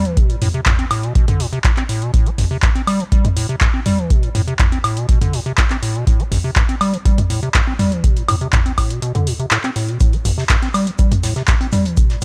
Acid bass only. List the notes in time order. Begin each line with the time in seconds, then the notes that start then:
0.05 E3
0.17 B2
0.30 A2
0.41 A2
0.54 C3
0.66 A2
0.79 C4
0.91 A2
1.03 B2
1.28 D3
1.40 A2
1.53 C3
1.64 A2
1.77 C4
1.89 A2
2.02 B2
2.26 A3
2.38 A1
2.51 C3
2.63 G2
2.75 C4
2.87 G3
3.00 E3
3.12 G3
3.25 A3
3.37 A2
3.49 C3
3.61 G2
3.74 C4
3.86 G3
3.98 E3
4.10 B2
4.23 A2
4.35 A2
4.48 C3
4.60 A2
4.72 C4
4.84 A2
4.97 B2
5.09 B2
5.21 D3
5.33 A2
5.46 C3
5.58 A2
5.71 C4
5.82 A2
5.95 B2
6.07 A2
6.20 A3
6.32 A1
6.44 C3
6.56 G2
6.69 C4
6.81 G3
6.93 E3
7.05 G3
7.18 A3
7.30 A2
7.43 C3
7.55 G2
7.67 C4
7.79 G3
7.92 E3
8.04 B2
8.17 A2
8.28 A2
8.41 C3
8.53 A2
8.66 C4
8.78 A2
8.90 B2
9.02 B2
9.15 D3
9.27 A2
9.39 C3
9.51 A2
9.64 C4
9.76 A2
9.89 B2
10.01 A2
10.13 A3
10.25 A1
10.38 C3
10.50 G2
10.62 C4
10.74 G3
10.87 E3
10.99 G3
11.12 A3
11.23 A2
11.36 C3
11.48 G2
11.61 C4
11.73 G3
11.85 E3
11.97 B2
12.10 A2